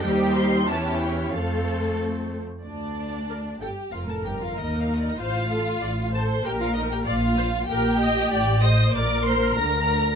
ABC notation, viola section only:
X:1
M:2/4
L:1/8
Q:1/4=95
K:Bb
V:1 name="Viola section"
[G,E]2 [=E,^C]2 | [A,C]3 z | z2 B A | B4 |
c A d c | B2 d c | B e d c | B4 |]